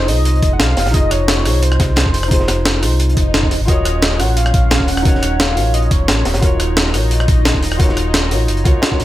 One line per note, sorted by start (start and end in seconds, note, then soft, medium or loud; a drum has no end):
0.00 0.05 D#4 medium
0.00 0.07 F4 medium
0.00 0.09 G#4 medium
0.00 0.11 C5 loud
0.00 0.97 D#5 loud
0.05 0.41 C2 loud
0.05 0.89 D#4 medium
0.05 0.92 F4 medium
0.05 0.93 G#4 medium
0.05 0.53 D#5 loud
0.05 closed hi-hat medium
0.05 open hi-hat medium
0.11 0.94 C5 medium
0.25 closed hi-hat medium
0.36 closed hi-hat soft
0.42 0.61 F1 loud
0.42 kick loud
0.42 closed hi-hat medium
0.53 0.61 F#5 medium
0.59 0.75 C2 loud
0.59 0.95 F5 loud
0.59 snare loud
0.59 closed hi-hat medium
0.77 0.87 F1 medium
0.77 snare loud
0.77 closed hi-hat medium
0.77 open hi-hat medium
0.86 0.93 C2 loud
0.86 snare loud
0.86 closed hi-hat medium
0.91 1.47 F1 loud
0.91 1.41 D#4 medium
0.91 1.43 F4 medium
0.91 1.12 D#5 loud
0.91 kick loud
0.91 closed hi-hat medium
0.95 1.44 G#4 medium
0.95 1.45 D#5 loud
1.11 1.64 C#5 loud
1.11 cross-stick soft
1.11 closed hi-hat loud
1.11 closed hi-hat medium
1.28 snare loud
1.28 closed hi-hat medium
1.37 snare medium
1.42 1.79 C2 loud
1.42 2.27 D#4 medium
1.42 2.29 F4 medium
1.42 cross-stick soft
1.42 closed hi-hat medium
1.42 open hi-hat medium
1.46 2.30 G#4 medium
1.46 2.31 C5 medium
1.62 3.00 C5 loud
1.62 closed hi-hat medium
1.72 cross-stick soft
1.80 2.05 C2 medium
1.80 kick loud
1.80 snare medium
1.80 closed hi-hat loud
1.80 closed hi-hat medium
1.96 snare loud
1.96 closed hi-hat medium
2.06 2.84 F1 medium
2.06 kick medium
2.14 closed hi-hat medium
2.14 open hi-hat medium
2.23 cross-stick soft
2.23 closed hi-hat soft
2.28 2.78 D#4 loud
2.28 2.80 F4 medium
2.28 2.81 G#4 medium
2.28 kick loud
2.28 closed hi-hat medium
2.28 closed hi-hat loud
2.34 2.82 C5 loud
2.40 snare medium
2.48 cross-stick soft
2.48 snare loud
2.48 closed hi-hat loud
2.48 closed hi-hat medium
2.66 snare loud
2.66 closed hi-hat medium
2.80 3.16 C2 loud
2.80 3.49 D#4 medium
2.80 3.50 F4 medium
2.80 cross-stick soft
2.80 closed hi-hat medium
2.80 open hi-hat medium
2.84 3.51 G#4 medium
2.84 3.52 C5 medium
2.99 closed hi-hat medium
2.99 swell medium
3.09 closed hi-hat soft
3.17 3.53 F1 loud
3.17 kick loud
3.17 closed hi-hat loud
3.17 closed hi-hat medium
3.34 snare loud
3.34 closed hi-hat medium
3.43 kick medium
3.51 3.59 D#1 medium
3.51 snare soft
3.51 closed hi-hat medium
3.51 open hi-hat medium
3.60 3.67 G#1 loud
3.65 4.21 D#1 loud
3.65 6.40 C#4 medium
3.65 4.15 F4 loud
3.65 4.17 F#4 medium
3.65 4.21 D#5 loud
3.65 kick loud
3.65 closed hi-hat medium
3.69 4.18 A#4 medium
3.69 4.19 C#5 loud
3.85 cross-stick soft
3.85 closed hi-hat medium
3.85 closed hi-hat loud
4.02 snare loud
4.02 closed hi-hat medium
4.12 snare medium
4.17 4.53 A#1 loud
4.17 5.02 F4 medium
4.17 5.03 F#4 medium
4.17 4.38 F#5 loud
4.17 cross-stick soft
4.17 closed hi-hat medium
4.17 open hi-hat medium
4.21 5.04 A#4 medium
4.21 5.05 C#5 medium
4.36 4.89 F5 loud
4.36 closed hi-hat medium
4.46 cross-stick medium
4.54 4.79 A#1 loud
4.54 kick loud
4.54 closed hi-hat medium
4.54 closed hi-hat loud
4.71 snare loud
4.71 closed hi-hat loud
4.71 closed hi-hat medium
4.80 5.58 D#1 medium
4.80 kick medium
4.88 5.41 F#5 loud
4.88 closed hi-hat medium
4.88 open hi-hat medium
4.97 cross-stick medium
4.97 closed hi-hat soft
5.02 5.53 D#4 loud
5.02 5.54 F#4 medium
5.02 kick loud
5.02 closed hi-hat medium
5.06 5.55 A#4 medium
5.06 5.56 C#5 loud
5.15 snare soft
5.22 cross-stick soft
5.22 closed hi-hat medium
5.22 closed hi-hat loud
5.39 5.73 F5 loud
5.39 snare loud
5.39 closed hi-hat medium
5.54 5.90 A#1 loud
5.54 6.38 F4 medium
5.54 6.40 F#4 medium
5.54 6.41 A#4 medium
5.54 closed hi-hat medium
5.54 open hi-hat medium
5.60 6.42 C#5 medium
5.74 5.93 D#5 loud
5.74 closed hi-hat medium
5.82 closed hi-hat soft
5.91 6.10 D#1 loud
5.91 6.25 C#5 medium
5.91 kick loud
5.91 closed hi-hat loud
5.91 closed hi-hat medium
6.08 6.24 A#1 medium
6.08 snare loud
6.08 closed hi-hat medium
6.25 6.36 D#1 medium
6.25 snare loud
6.25 closed hi-hat medium
6.25 open hi-hat medium
6.34 6.42 A#1 loud
6.34 snare loud
6.34 closed hi-hat medium
6.40 6.96 D#1 loud
6.40 9.05 D#4 medium
6.40 6.89 F4 loud
6.40 6.91 F#4 medium
6.40 6.93 A#4 medium
6.40 kick loud
6.40 closed hi-hat medium
6.46 6.94 C#5 loud
6.60 cross-stick soft
6.60 closed hi-hat loud
6.60 closed hi-hat medium
6.77 snare loud
6.77 closed hi-hat medium
6.86 snare medium
6.91 7.27 A#1 loud
6.91 7.75 F4 medium
6.91 7.77 F#4 medium
6.91 cross-stick soft
6.91 closed hi-hat medium
6.91 open hi-hat medium
6.95 7.78 A#4 medium
6.95 7.79 C#5 medium
7.11 closed hi-hat medium
7.20 cross-stick soft
7.28 7.53 A#1 loud
7.28 kick loud
7.28 closed hi-hat medium
7.45 snare loud
7.45 closed hi-hat medium
7.54 8.33 D#1 medium
7.54 kick medium
7.63 closed hi-hat medium
7.63 open hi-hat medium
7.71 cross-stick medium
7.71 closed hi-hat soft
7.77 8.28 F4 loud
7.77 8.29 F#4 medium
7.77 8.30 A#4 medium
7.77 kick loud
7.77 closed hi-hat medium
7.83 8.31 C#5 loud
7.89 snare medium
7.97 cross-stick soft
7.97 closed hi-hat medium
8.14 snare loud
8.14 closed hi-hat medium
8.30 8.48 A#1 loud
8.30 8.62 F4 medium
8.30 8.63 F#4 medium
8.30 8.64 A#4 medium
8.30 8.65 C#5 medium
8.30 closed hi-hat medium
8.30 open hi-hat medium
8.48 8.67 F#1 medium
8.48 closed hi-hat medium
8.57 closed hi-hat soft
8.64 8.74 D#2 medium
8.64 8.89 F4 loud
8.64 8.89 F#4 medium
8.64 8.90 A#4 medium
8.64 8.90 C#5 loud
8.64 kick loud
8.64 closed hi-hat medium
8.82 snare loud
8.82 closed hi-hat medium
8.90 9.05 F4 medium
8.90 9.05 F#4 medium
8.90 9.05 A#4 medium
8.90 9.05 C#5 loud
8.90 kick medium
9.00 9.05 A#1 medium
9.00 snare soft
9.00 closed hi-hat medium
9.00 open hi-hat medium